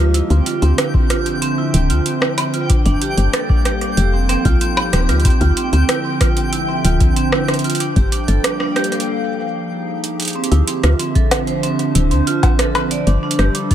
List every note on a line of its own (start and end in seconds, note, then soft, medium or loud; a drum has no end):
0.00 0.22 D2 medium
0.00 0.14 F3 medium
0.00 0.14 G#3 medium
0.00 0.14 D#4 medium
0.00 1.16 G4 medium
0.00 0.14 F5 medium
0.14 2.70 D3 medium
0.14 0.24 E4 medium
0.14 9.08 G5 medium
0.14 closed hi-hat medium
0.30 0.41 D2 loud
0.30 0.40 C4 medium
0.30 closed hi-hat soft
0.39 3.97 D4 medium
0.46 0.60 F4 medium
0.46 closed hi-hat medium
0.55 3.21 F3 medium
0.62 0.73 D2 loud
0.62 0.72 C4 medium
0.62 closed hi-hat soft
0.78 0.92 E4 medium
0.78 cross-stick loud
0.78 closed hi-hat medium
0.91 1.04 C4 medium
0.91 3.21 C5 medium
0.91 kick loud
1.10 1.24 F4 medium
1.10 2.70 E5 medium
1.10 cross-stick medium
1.10 closed hi-hat medium
1.26 1.35 C4 medium
1.26 closed hi-hat soft
1.42 1.51 C4 loud
1.42 closed hi-hat medium
1.58 1.67 E4 loud
1.74 1.91 D1 medium
1.74 1.83 C4 medium
1.74 closed hi-hat medium
1.90 2.00 D2 medium
1.90 2.04 F4 medium
1.90 closed hi-hat medium
2.06 2.15 C4 medium
2.06 closed hi-hat medium
2.22 2.36 E4 medium
2.22 cross-stick loud
2.38 2.47 C4 medium
2.38 cross-stick medium
2.38 closed hi-hat medium
2.54 2.68 F4 medium
2.54 closed hi-hat soft
2.70 3.97 G3 medium
2.70 2.79 D4 medium
2.70 kick loud
2.70 closed hi-hat medium
2.86 2.96 G1 medium
2.86 2.95 D4 loud
2.86 closed hi-hat soft
2.94 3.97 A4 medium
3.01 4.48 A#3 medium
3.01 3.11 G4 loud
3.01 closed hi-hat medium
3.17 3.28 G1 loud
3.17 3.27 D4 medium
3.17 closed hi-hat soft
3.27 5.25 F5 medium
3.33 3.48 A4 medium
3.33 cross-stick loud
3.33 closed hi-hat medium
3.49 3.59 D4 medium
3.49 kick loud
3.65 3.80 G4 medium
3.65 cross-stick medium
3.65 closed hi-hat medium
3.81 3.91 D4 medium
3.81 cross-stick soft
3.81 closed hi-hat soft
3.97 4.37 F1 loud
3.97 5.25 F3 medium
3.97 4.11 G4 medium
3.97 closed hi-hat medium
4.13 4.23 C4 medium
4.13 5.25 D#4 medium
4.29 4.39 C4 loud
4.29 cross-stick soft
4.29 closed hi-hat medium
4.45 4.56 C2 medium
4.45 4.55 F4 loud
4.45 kick loud
4.45 closed hi-hat medium
4.55 5.25 G#3 medium
4.55 6.19 G4 medium
4.61 4.71 C4 medium
4.61 closed hi-hat medium
4.77 4.91 G4 medium
4.77 cross-stick loud
4.93 5.11 D#1 medium
4.93 5.02 C4 medium
4.93 cross-stick medium
4.93 closed hi-hat medium
5.09 5.30 D2 medium
5.09 5.23 F4 medium
5.09 cross-stick medium
5.09 closed hi-hat soft
5.20 closed hi-hat soft
5.25 7.80 D3 medium
5.25 5.34 C4 medium
5.25 kick loud
5.25 closed hi-hat medium
5.41 5.52 D2 loud
5.41 5.55 F4 medium
5.41 closed hi-hat soft
5.57 8.31 F3 medium
5.57 5.66 C4 medium
5.57 closed hi-hat medium
5.71 5.83 D2 loud
5.71 5.82 C4 medium
5.71 9.08 D4 medium
5.71 closed hi-hat medium
5.89 5.98 E4 loud
5.89 cross-stick loud
5.89 closed hi-hat medium
6.05 6.14 C4 medium
6.21 6.35 F4 medium
6.21 kick loud
6.21 cross-stick medium
6.21 closed hi-hat medium
6.37 6.46 C4 medium
6.37 8.31 C5 medium
6.37 7.80 E5 medium
6.37 closed hi-hat medium
6.53 6.67 E4 medium
6.53 closed hi-hat medium
6.69 6.78 C4 medium
6.85 7.02 D1 loud
6.85 6.99 F4 medium
6.85 closed hi-hat medium
7.00 7.11 D2 medium
7.00 7.10 C4 medium
7.00 kick loud
7.00 closed hi-hat soft
7.16 7.26 C4 loud
7.16 closed hi-hat medium
7.32 7.42 E4 loud
7.32 cross-stick loud
7.48 7.58 C4 medium
7.48 cross-stick medium
7.48 closed hi-hat soft
7.54 closed hi-hat soft
7.59 closed hi-hat soft
7.64 7.78 F4 medium
7.64 closed hi-hat medium
7.70 closed hi-hat medium
7.75 closed hi-hat medium
7.80 9.08 G3 medium
7.80 7.90 D4 medium
7.80 closed hi-hat medium
7.96 8.07 G1 medium
7.96 8.10 G4 medium
7.96 kick loud
7.96 closed hi-hat soft
8.12 8.22 D4 medium
8.12 closed hi-hat medium
8.28 8.39 G1 loud
8.28 8.42 A4 medium
8.28 closed hi-hat medium
8.38 9.59 A#3 medium
8.38 9.08 A4 medium
8.38 10.36 F5 medium
8.44 8.54 D4 medium
8.44 cross-stick loud
8.44 closed hi-hat medium
8.60 8.69 D4 medium
8.60 cross-stick medium
8.76 8.85 G4 loud
8.76 cross-stick medium
8.76 closed hi-hat soft
8.84 closed hi-hat soft
8.92 9.01 D4 medium
8.92 cross-stick soft
8.92 closed hi-hat medium
9.00 closed hi-hat medium
9.08 10.36 F3 medium
9.49 10.36 D#4 medium
9.65 11.38 G4 medium
9.65 10.36 G#4 medium
10.04 closed hi-hat medium
10.20 closed hi-hat medium
10.22 closed hi-hat medium
10.25 closed hi-hat soft
10.28 closed hi-hat medium
10.30 closed hi-hat soft
10.33 12.91 D3 medium
10.33 10.45 C4 medium
10.33 closed hi-hat soft
10.44 closed hi-hat medium
10.52 10.62 D2 loud
10.52 10.61 E4 medium
10.52 closed hi-hat soft
10.56 12.91 E5 medium
10.68 10.77 C4 medium
10.68 closed hi-hat loud
10.76 13.42 F3 medium
10.76 13.75 D4 medium
10.83 10.94 D2 medium
10.83 10.93 F4 medium
10.83 cross-stick medium
10.83 closed hi-hat soft
10.99 11.14 C4 medium
10.99 closed hi-hat medium
11.15 11.21 A4 medium
11.15 kick medium
11.15 closed hi-hat soft
11.31 11.37 C4 medium
11.31 cross-stick loud
11.31 closed hi-hat loud
11.31 cowbell loud
11.47 11.57 C5 medium
11.47 13.42 C5 medium
11.47 closed hi-hat soft
11.63 11.73 C4 medium
11.63 closed hi-hat medium
11.79 11.89 C4 medium
11.79 closed hi-hat soft
11.95 12.13 D1 medium
11.95 12.05 E4 medium
11.95 closed hi-hat loud
12.11 12.22 D2 medium
12.11 12.21 C4 medium
12.11 closed hi-hat soft
12.27 12.37 F4 medium
12.27 closed hi-hat medium
12.43 12.57 C4 medium
12.43 kick loud
12.43 closed hi-hat soft
12.43 cowbell medium
12.59 12.65 A4 medium
12.59 cross-stick loud
12.59 closed hi-hat loud
12.75 12.81 C4 medium
12.75 cross-stick medium
12.75 closed hi-hat soft
12.75 cowbell medium
12.91 13.75 G3 medium
12.91 13.00 D5 medium
12.91 closed hi-hat medium
13.07 13.18 G1 loud
13.07 13.16 D4 medium
13.07 closed hi-hat soft
13.23 13.32 D4 medium
13.28 13.75 A4 medium
13.28 closed hi-hat loud
13.39 13.49 G1 loud
13.39 13.48 G4 medium
13.39 cross-stick medium
13.39 closed hi-hat soft
13.48 13.75 A#3 medium
13.48 13.75 F5 medium
13.55 13.64 D4 medium
13.55 closed hi-hat medium
13.71 13.75 A4 medium
13.71 kick medium
13.71 closed hi-hat soft